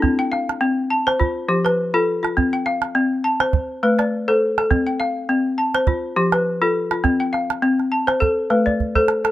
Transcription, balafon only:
0, 0, Header, 1, 2, 480
1, 0, Start_track
1, 0, Tempo, 584226
1, 30, Time_signature, 4, 2, 24, 8
1, 7654, End_track
2, 0, Start_track
2, 0, Title_t, "Balafon"
2, 0, Program_c, 0, 12
2, 0, Note_on_c, 0, 62, 70
2, 19, Note_on_c, 0, 60, 80
2, 141, Note_off_c, 0, 62, 0
2, 155, Note_on_c, 0, 79, 67
2, 260, Note_on_c, 0, 77, 60
2, 264, Note_off_c, 0, 60, 0
2, 499, Note_on_c, 0, 60, 83
2, 505, Note_off_c, 0, 79, 0
2, 636, Note_off_c, 0, 77, 0
2, 743, Note_off_c, 0, 60, 0
2, 743, Note_on_c, 0, 81, 65
2, 878, Note_on_c, 0, 72, 80
2, 982, Note_on_c, 0, 65, 76
2, 987, Note_off_c, 0, 72, 0
2, 1117, Note_off_c, 0, 81, 0
2, 1220, Note_on_c, 0, 53, 75
2, 1221, Note_on_c, 0, 67, 62
2, 1352, Note_on_c, 0, 71, 66
2, 1357, Note_off_c, 0, 65, 0
2, 1463, Note_off_c, 0, 53, 0
2, 1593, Note_on_c, 0, 65, 82
2, 1594, Note_on_c, 0, 69, 64
2, 1596, Note_off_c, 0, 67, 0
2, 1703, Note_off_c, 0, 71, 0
2, 1821, Note_off_c, 0, 65, 0
2, 1831, Note_on_c, 0, 65, 64
2, 1944, Note_off_c, 0, 69, 0
2, 1946, Note_on_c, 0, 60, 74
2, 2075, Note_off_c, 0, 65, 0
2, 2079, Note_on_c, 0, 79, 62
2, 2184, Note_on_c, 0, 77, 65
2, 2186, Note_off_c, 0, 60, 0
2, 2422, Note_on_c, 0, 60, 76
2, 2426, Note_off_c, 0, 79, 0
2, 2557, Note_off_c, 0, 77, 0
2, 2664, Note_off_c, 0, 60, 0
2, 2664, Note_on_c, 0, 81, 68
2, 2797, Note_on_c, 0, 72, 72
2, 2905, Note_off_c, 0, 72, 0
2, 3037, Note_off_c, 0, 81, 0
2, 3146, Note_on_c, 0, 57, 79
2, 3148, Note_on_c, 0, 71, 70
2, 3275, Note_on_c, 0, 74, 58
2, 3386, Note_off_c, 0, 57, 0
2, 3517, Note_on_c, 0, 69, 82
2, 3517, Note_on_c, 0, 72, 67
2, 3519, Note_off_c, 0, 71, 0
2, 3624, Note_off_c, 0, 74, 0
2, 3751, Note_off_c, 0, 69, 0
2, 3761, Note_on_c, 0, 69, 66
2, 3865, Note_off_c, 0, 72, 0
2, 3866, Note_on_c, 0, 60, 83
2, 3998, Note_on_c, 0, 79, 65
2, 3999, Note_off_c, 0, 69, 0
2, 4105, Note_on_c, 0, 77, 67
2, 4106, Note_off_c, 0, 60, 0
2, 4346, Note_off_c, 0, 79, 0
2, 4346, Note_on_c, 0, 60, 84
2, 4478, Note_off_c, 0, 77, 0
2, 4584, Note_on_c, 0, 81, 63
2, 4586, Note_off_c, 0, 60, 0
2, 4722, Note_on_c, 0, 72, 81
2, 4827, Note_on_c, 0, 65, 69
2, 4828, Note_off_c, 0, 72, 0
2, 4957, Note_off_c, 0, 81, 0
2, 5064, Note_on_c, 0, 67, 69
2, 5066, Note_on_c, 0, 53, 87
2, 5198, Note_on_c, 0, 71, 67
2, 5199, Note_off_c, 0, 65, 0
2, 5306, Note_off_c, 0, 53, 0
2, 5436, Note_on_c, 0, 65, 80
2, 5436, Note_on_c, 0, 69, 60
2, 5438, Note_off_c, 0, 67, 0
2, 5546, Note_off_c, 0, 71, 0
2, 5668, Note_off_c, 0, 65, 0
2, 5678, Note_on_c, 0, 65, 62
2, 5782, Note_on_c, 0, 60, 85
2, 5786, Note_off_c, 0, 69, 0
2, 5916, Note_on_c, 0, 79, 60
2, 5919, Note_off_c, 0, 65, 0
2, 6020, Note_on_c, 0, 77, 60
2, 6025, Note_off_c, 0, 60, 0
2, 6264, Note_on_c, 0, 60, 88
2, 6266, Note_off_c, 0, 79, 0
2, 6396, Note_off_c, 0, 77, 0
2, 6504, Note_on_c, 0, 81, 58
2, 6506, Note_off_c, 0, 60, 0
2, 6633, Note_on_c, 0, 72, 73
2, 6740, Note_on_c, 0, 69, 74
2, 6745, Note_off_c, 0, 72, 0
2, 6879, Note_off_c, 0, 81, 0
2, 6985, Note_on_c, 0, 71, 66
2, 6986, Note_on_c, 0, 57, 75
2, 7114, Note_on_c, 0, 74, 63
2, 7117, Note_off_c, 0, 69, 0
2, 7228, Note_off_c, 0, 57, 0
2, 7357, Note_on_c, 0, 72, 65
2, 7358, Note_on_c, 0, 69, 73
2, 7360, Note_off_c, 0, 71, 0
2, 7466, Note_off_c, 0, 74, 0
2, 7585, Note_off_c, 0, 69, 0
2, 7595, Note_on_c, 0, 69, 54
2, 7654, Note_off_c, 0, 69, 0
2, 7654, Note_off_c, 0, 72, 0
2, 7654, End_track
0, 0, End_of_file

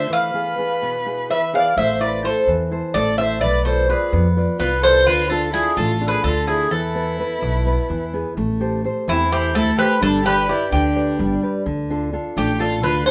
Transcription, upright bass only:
0, 0, Header, 1, 2, 480
1, 0, Start_track
1, 0, Tempo, 471328
1, 114, Time_signature, 7, 3, 24, 8
1, 13350, End_track
2, 0, Start_track
2, 0, Title_t, "Upright bass"
2, 0, Program_c, 0, 32
2, 1802, Note_on_c, 0, 33, 89
2, 2305, Note_off_c, 0, 33, 0
2, 2519, Note_on_c, 0, 40, 85
2, 2855, Note_off_c, 0, 40, 0
2, 3001, Note_on_c, 0, 33, 86
2, 3480, Note_off_c, 0, 33, 0
2, 3480, Note_on_c, 0, 35, 82
2, 3984, Note_off_c, 0, 35, 0
2, 4202, Note_on_c, 0, 41, 94
2, 4538, Note_off_c, 0, 41, 0
2, 4679, Note_on_c, 0, 36, 85
2, 5162, Note_off_c, 0, 36, 0
2, 5162, Note_on_c, 0, 38, 85
2, 5666, Note_off_c, 0, 38, 0
2, 5876, Note_on_c, 0, 33, 99
2, 6213, Note_off_c, 0, 33, 0
2, 6353, Note_on_c, 0, 38, 77
2, 6832, Note_off_c, 0, 38, 0
2, 6832, Note_on_c, 0, 40, 76
2, 7339, Note_off_c, 0, 40, 0
2, 7560, Note_on_c, 0, 35, 99
2, 7896, Note_off_c, 0, 35, 0
2, 8043, Note_on_c, 0, 40, 84
2, 8377, Note_off_c, 0, 40, 0
2, 8524, Note_on_c, 0, 33, 85
2, 9025, Note_off_c, 0, 33, 0
2, 9246, Note_on_c, 0, 40, 92
2, 9722, Note_off_c, 0, 40, 0
2, 9722, Note_on_c, 0, 38, 93
2, 9888, Note_off_c, 0, 38, 0
2, 10202, Note_on_c, 0, 31, 86
2, 10703, Note_off_c, 0, 31, 0
2, 10917, Note_on_c, 0, 38, 82
2, 11399, Note_on_c, 0, 31, 93
2, 11414, Note_off_c, 0, 38, 0
2, 11565, Note_off_c, 0, 31, 0
2, 11876, Note_on_c, 0, 38, 90
2, 12378, Note_off_c, 0, 38, 0
2, 12594, Note_on_c, 0, 33, 96
2, 13075, Note_off_c, 0, 33, 0
2, 13075, Note_on_c, 0, 38, 98
2, 13242, Note_off_c, 0, 38, 0
2, 13350, End_track
0, 0, End_of_file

